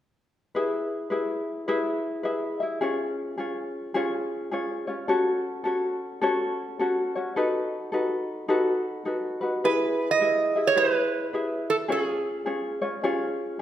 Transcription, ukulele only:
0.55 1.10 E4 medium
0.55 1.11 G#4 medium
0.55 1.09 B4 medium
0.55 1.11 E5 medium
1.10 1.67 E4 medium
1.10 1.68 G#4 medium
1.10 1.67 B4 medium
1.10 1.67 E5 soft
1.68 2.23 E4 medium
1.68 2.25 G#4 medium
1.68 2.22 B4 medium
1.68 2.24 E5 medium
2.23 2.60 E4 medium
2.23 2.61 G#4 medium
2.23 2.60 B4 soft
2.23 2.59 E5 medium
2.60 2.81 E4 soft
2.60 2.80 G#4 soft
2.60 2.81 E5 soft
2.81 3.38 C#4 medium
2.81 3.38 F4 medium
2.81 3.36 G#4 medium
2.81 3.39 C#5 medium
3.38 3.94 C#4 medium
3.38 3.94 F4 medium
3.38 3.93 G#4 medium
3.38 3.96 C#5 medium
3.94 4.52 C#4 medium
3.94 4.51 F4 medium
3.94 4.50 G#4 medium
3.94 4.53 C#5 medium
4.51 4.88 C#4 medium
4.51 4.87 F4 medium
4.51 4.88 G#4 medium
4.51 4.86 C#5 medium
4.87 5.08 C#4 soft
4.87 5.09 F4 soft
4.87 5.08 C#5 soft
5.08 5.64 C#4 medium
5.08 5.65 F#4 medium
5.08 5.63 A4 medium
5.08 5.66 C#5 medium
5.64 6.21 C#4 medium
5.64 6.22 F#4 medium
5.64 6.21 A4 medium
5.64 6.22 C#5 medium
6.22 6.79 C#4 medium
6.22 6.80 F#4 medium
6.22 6.79 A4 medium
6.22 6.80 C#5 medium
6.79 7.16 C#4 medium
6.79 7.15 F#4 medium
6.79 7.15 A4 medium
6.79 7.14 C#5 medium
7.15 7.37 C#4 soft
7.15 7.36 F#4 soft
7.15 7.36 C#5 soft
7.36 7.92 D#4 medium
7.36 7.92 F#4 medium
7.36 7.91 A4 medium
7.36 7.94 B4 medium
7.92 8.47 D#4 medium
7.92 8.49 F#4 medium
7.92 8.47 A4 medium
7.92 8.49 B4 medium
8.48 9.04 D#4 medium
8.48 9.05 F#4 medium
8.48 9.04 A4 medium
8.48 9.07 B4 medium
9.05 9.42 D#4 medium
9.05 9.41 F#4 medium
9.05 9.40 A4 medium
9.05 9.40 B4 medium
9.41 9.64 D#4 soft
9.41 9.63 F#4 soft
9.41 9.62 B4 soft
9.64 10.20 E4 medium
9.64 10.21 G#4 medium
9.64 10.19 B4 medium
9.64 10.21 E5 medium
10.20 10.56 E4 medium
10.20 10.56 G#4 medium
10.20 10.56 B4 medium
10.20 10.55 E5 medium
10.56 10.76 E4 soft
10.56 10.76 G#4 soft
10.56 10.76 E5 soft
10.76 11.33 E4 medium
10.76 11.34 G#4 medium
10.76 11.32 B4 medium
10.76 11.34 E5 medium
11.33 11.89 E4 medium
11.33 11.88 G#4 medium
11.33 11.88 B4 soft
11.33 11.89 E5 medium
11.88 12.46 C#4 medium
11.88 12.45 F4 medium
11.88 12.45 G#4 medium
11.88 12.46 C#5 medium
12.46 12.82 C#4 medium
12.46 12.81 F4 medium
12.46 12.82 G#4 medium
12.46 12.80 C#5 medium
12.82 13.03 C#4 soft
12.82 13.03 F4 medium
12.82 13.03 C#5 medium
13.03 13.59 C#4 medium
13.03 13.60 F4 medium
13.03 13.58 G#4 medium
13.03 13.61 C#5 medium

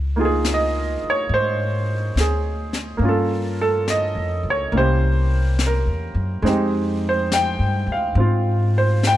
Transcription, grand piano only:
0.16 2.96 A#3 soft
0.16 3.03 D#4 soft
0.16 3.03 F4 soft
0.21 0.24 G#4 soft
0.25 0.48 G#4 medium
0.54 1.04 D#5 medium
1.10 1.33 C#5 medium
1.34 2.15 C5 medium
2.20 2.87 G#4 medium
2.97 4.71 A#3 soft
3.02 4.72 C#4 soft
3.02 4.75 F4 soft
3.09 3.60 A4 medium
3.61 3.87 A4 medium
3.90 4.49 D#5 medium
4.50 4.77 C#5 medium
4.72 6.45 A#3 soft
4.72 6.45 C#4 soft
4.72 6.46 E4 soft
4.77 6.46 G4 soft
4.77 5.58 C5 medium
5.66 6.31 A#4 medium
6.43 9.17 G#3 medium
6.43 8.16 C4 soft
6.43 9.17 D#4 soft
6.48 9.17 G4 medium
7.09 7.32 C5 medium
7.34 7.86 G5 medium
7.92 8.17 F5 medium
8.17 9.17 C4 soft
8.17 9.17 F4 soft
8.78 9.05 C5 medium
9.07 9.17 G5 medium

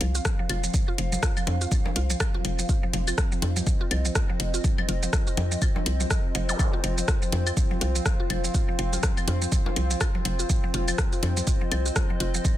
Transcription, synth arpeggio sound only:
0.01 0.03 F3 medium
0.15 0.17 F4 medium
0.25 0.31 F3 medium
0.39 0.41 F3 medium
0.49 0.52 F4 medium
0.64 0.68 F3 medium
0.74 0.76 F3 medium
0.88 0.90 F4 medium
0.98 1.05 F3 medium
1.12 1.14 F3 medium
1.23 1.25 F4 medium
1.37 1.41 F3 medium
1.47 1.50 F3 medium
1.61 1.63 F4 medium
1.71 1.78 F3 medium
1.86 1.88 F3 medium
1.96 1.98 F4 medium
2.10 2.15 F3 medium
2.20 2.23 F3 medium
2.34 2.36 F4 medium
2.45 2.51 F3 medium
2.59 2.61 F3 medium
2.69 2.72 F4 medium
2.83 2.88 F3 medium
2.93 2.96 F3 medium
3.08 3.10 F4 medium
3.18 3.24 F3 medium
3.32 3.34 F3 medium
3.42 3.45 F4 medium
3.56 3.61 F3 medium
3.67 3.69 F3 medium
3.81 3.83 F4 medium
3.91 3.97 F3 medium
4.05 4.07 F3 medium
4.15 4.18 F4 medium
4.29 4.34 F3 medium
4.40 4.42 F3 medium
4.54 4.56 F4 medium
4.64 4.71 F3 medium
4.78 4.80 F3 medium
4.89 4.91 F4 medium
5.03 5.07 F3 medium
5.13 5.16 F3 medium
5.27 5.29 F4 medium
5.37 5.44 F3 medium
5.51 5.53 F3 medium
5.62 5.64 F4 medium
5.76 5.80 F3 medium
5.86 5.89 F3 medium
6.00 6.02 F3 medium
6.10 6.13 F3 medium
6.35 6.37 F3 loud
6.49 6.54 F3 medium
6.59 6.62 F3 medium
6.73 6.75 F4 medium
6.84 6.90 F3 medium
6.98 7.00 F3 medium
7.08 7.11 F4 medium
7.22 7.27 F3 medium
7.32 7.35 F3 medium
7.47 7.49 F4 medium
7.57 7.63 F3 medium
7.71 7.73 F3 medium
7.81 7.84 F4 medium
7.95 8.00 F3 medium
8.06 8.08 F3 medium
8.20 8.22 F4 medium
8.30 8.36 F3 medium
8.44 8.46 F3 medium
8.54 8.57 F4 medium
8.69 8.73 F3 medium
8.79 8.81 F3 medium
8.93 8.95 F4 medium
9.03 9.10 F3 medium
9.17 9.19 F3 medium
9.28 9.30 F4 medium
9.42 9.46 F3 medium
9.52 9.55 F3 medium
9.66 9.68 F4 medium
9.76 9.83 F3 medium
9.91 9.93 F3 medium
10.01 10.03 F4 medium
10.15 10.20 F3 medium
10.25 10.28 F3 medium
10.39 10.41 F4 medium
10.50 10.56 F3 medium
10.64 10.66 F3 medium
10.74 10.77 F4 medium
10.88 10.93 F3 medium
10.98 11.01 F3 medium
11.13 11.15 F4 medium
11.23 11.29 F3 medium
11.37 11.39 F3 medium
11.47 11.50 F4 medium
11.61 11.66 F3 medium
11.72 11.74 F3 medium
11.86 11.88 F4 medium
11.96 12.02 F3 medium
12.10 12.12 F3 medium
12.20 12.23 F4 medium
12.34 12.39 F3 medium
12.45 12.47 F3 medium

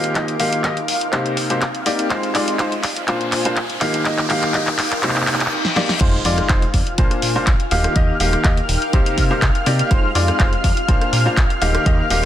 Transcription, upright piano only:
0.00 0.13 D#3 loud
0.00 0.12 A#3 medium
0.00 0.13 D#4 medium
0.00 0.12 G4 medium
0.00 0.13 F5 loud
0.15 0.33 D#3 medium
0.15 0.33 A#3 medium
0.15 0.33 D#4 medium
0.15 0.33 G4 medium
0.15 0.33 D#5 medium
0.40 0.61 D#3 medium
0.40 0.61 A#3 medium
0.40 0.61 D#4 medium
0.40 0.61 G4 medium
0.40 0.61 F5 medium
0.64 0.75 D#3 medium
0.64 0.75 A#3 medium
0.64 0.75 D#4 medium
0.64 0.75 G4 medium
0.64 0.75 D#5 loud
1.13 1.47 C3 medium
1.13 1.47 A#3 medium
1.13 1.47 D#4 medium
1.13 1.47 G4 medium
1.13 1.47 C5 medium
1.50 1.60 C3 medium
1.50 1.60 A#3 medium
1.50 1.60 D#4 medium
1.50 1.60 G4 medium
1.50 1.60 C5 medium
1.86 2.08 A#3 loud
1.86 2.08 D#4 medium
1.86 2.08 G4 medium
1.86 2.08 D5 loud
2.10 2.28 G#3 medium
2.10 2.28 D#4 medium
2.10 2.28 F4 medium
2.10 2.28 C5 medium
2.35 2.56 G#3 medium
2.35 2.56 D#4 medium
2.35 2.56 F4 medium
2.35 2.56 D5 loud
2.59 2.70 G#3 medium
2.59 2.70 D#4 medium
2.59 2.70 F4 medium
2.59 2.70 C5 loud
3.08 3.42 A#2 medium
3.08 3.42 A#3 medium
3.08 3.42 D4 medium
3.08 3.42 F4 medium
3.08 3.42 C5 medium
3.45 3.55 A#2 medium
3.45 3.55 A#3 medium
3.45 3.55 D4 medium
3.45 3.55 F4 medium
3.45 3.55 C5 loud
3.81 4.03 D#3 loud
3.81 4.03 A#3 medium
3.81 4.03 D#4 loud
3.81 4.03 G4 medium
3.81 4.03 F5 loud
4.06 4.23 D#3 medium
4.06 4.23 A#3 medium
4.06 4.23 D#4 medium
4.06 4.23 G4 medium
4.06 4.23 D#5 medium
4.30 4.52 D#3 medium
4.30 4.52 A#3 medium
4.30 4.52 D#4 medium
4.30 4.52 G4 medium
4.30 4.52 F5 loud
4.54 4.66 D#3 medium
4.54 4.66 A#3 medium
4.54 4.66 D#4 medium
4.54 4.66 G4 medium
4.54 4.66 D#5 loud
5.03 5.37 C3 medium
5.03 5.37 A#3 medium
5.03 5.37 D#4 medium
5.03 5.37 G4 medium
5.03 5.37 C5 medium
5.76 5.88 A#3 loud
5.76 5.88 D#4 medium
5.76 5.88 G4 medium
5.76 5.88 D5 loud
6.01 6.18 G#3 medium
6.01 6.18 D#4 medium
6.01 6.18 F4 medium
6.01 6.18 C5 medium
6.25 6.47 G#3 medium
6.25 6.47 D#4 medium
6.25 6.47 F4 medium
6.25 6.47 D5 loud
6.49 6.61 G#3 medium
6.49 6.61 D#4 medium
6.49 6.61 F4 medium
6.49 6.61 C5 loud
6.98 7.32 A#2 medium
6.98 7.32 A#3 medium
6.98 7.32 D4 medium
6.98 7.32 F4 medium
6.98 7.32 C5 medium
7.36 7.46 A#2 medium
7.36 7.46 A#3 medium
7.36 7.46 D4 medium
7.36 7.46 F4 medium
7.36 7.46 C5 loud
7.71 7.93 D#3 loud
7.71 7.93 A#3 medium
7.71 7.93 D#4 medium
7.71 7.93 G4 medium
7.71 7.93 F5 loud
7.96 8.13 D#3 medium
7.96 8.13 A#3 medium
7.96 8.13 D#4 medium
7.96 8.13 G4 medium
7.96 8.13 D#5 medium
8.20 8.42 D#3 medium
8.20 8.42 A#3 medium
8.20 8.42 D#4 medium
8.20 8.42 G4 medium
8.20 8.42 F5 loud
8.45 8.56 D#3 medium
8.45 8.56 A#3 medium
8.45 8.56 D#4 medium
8.45 8.56 G4 medium
8.45 8.56 D#5 loud
8.93 9.28 C3 medium
8.93 9.28 A#3 medium
8.93 9.28 D#4 medium
8.93 9.28 G4 medium
8.93 9.28 C5 medium
9.31 9.41 C3 medium
9.31 9.41 A#3 medium
9.31 9.41 D#4 medium
9.31 9.41 G4 medium
9.31 9.41 C5 loud
9.66 9.88 A#3 loud
9.66 9.88 D#4 medium
9.66 9.88 G4 medium
9.66 9.88 D5 loud
9.91 10.08 G#3 medium
9.91 10.08 D#4 medium
9.91 10.08 F4 medium
9.91 10.08 C5 medium
10.15 10.37 G#3 medium
10.15 10.37 D#4 medium
10.15 10.37 F4 medium
10.15 10.37 D5 loud
10.39 10.51 G#3 medium
10.39 10.51 D#4 medium
10.39 10.51 F4 medium
10.39 10.51 C5 loud
10.88 11.23 A#2 medium
10.88 11.23 A#3 medium
10.88 11.23 D4 medium
10.88 11.23 F4 medium
10.88 11.23 C5 medium
11.26 11.36 A#2 medium
11.26 11.36 A#3 medium
11.26 11.36 D4 medium
11.26 11.36 F4 medium
11.26 11.36 C5 loud
11.61 11.83 D#3 loud
11.61 11.83 A#3 medium
11.61 11.83 D#4 loud
11.61 11.83 G4 medium
11.61 11.83 F5 loud
11.86 12.03 D#3 medium
11.86 12.03 A#3 medium
11.86 12.03 D#4 medium
11.86 12.03 G4 medium
11.86 12.03 D#5 medium
12.10 12.25 D#3 medium
12.10 12.25 A#3 medium
12.10 12.25 D#4 medium
12.10 12.25 G4 medium
12.10 12.25 F5 loud

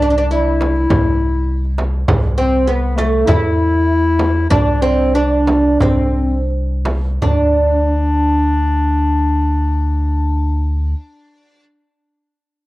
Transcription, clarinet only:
0.00 0.17 D4 medium
0.17 0.30 D4 medium
0.32 1.75 E4 medium
2.39 2.69 C4 medium
2.68 2.98 B3 medium
2.97 3.28 A3 medium
3.26 4.50 E4 medium
4.50 4.84 D4 medium
4.82 5.17 C4 medium
5.15 5.80 D4 medium
5.80 6.46 C4 medium
7.22 10.94 D4 medium

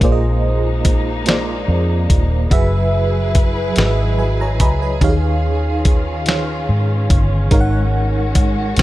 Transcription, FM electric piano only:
0.03 0.82 A#3 loud
0.03 0.82 F4 medium
0.03 0.82 G#4 medium
0.03 0.82 C5 medium
0.03 0.10 D5 medium
0.12 0.86 D#5 loud
1.26 2.06 A#3 medium
1.26 2.06 F4 medium
1.26 2.06 G#4 medium
1.26 2.07 C5 medium
1.26 2.07 D5 medium
2.50 3.30 F#3 loud
2.50 3.31 F#4 medium
2.50 3.31 G#4 medium
2.50 3.32 B4 loud
2.50 3.32 E5 loud
3.77 4.56 F#3 medium
3.77 4.56 F#4 medium
3.77 4.57 G#4 medium
3.77 4.18 B4 medium
3.77 3.84 D#5 medium
3.86 4.23 E5 medium
4.19 4.39 B4 medium
4.19 4.38 G#5 medium
4.41 4.60 C#5 medium
4.41 4.60 A#5 medium
4.61 4.80 D#5 medium
4.61 4.80 B5 medium
4.82 5.21 B4 medium
4.82 5.21 G#5 medium
5.01 5.81 D#3 loud
5.01 5.81 D#4 medium
5.01 5.09 G4 medium
5.01 5.82 C#5 medium
5.01 5.82 F5 loud
5.09 5.85 G#4 medium
6.26 7.06 D#3 medium
6.26 7.06 D#4 medium
6.26 7.06 G#4 medium
6.26 7.07 C#5 medium
6.26 7.07 F5 medium
7.51 8.31 G#3 medium
7.51 8.31 D#4 medium
7.51 8.31 A#4 medium
7.51 8.32 C#5 medium
7.51 7.59 F5 medium
7.61 8.35 F#5 loud

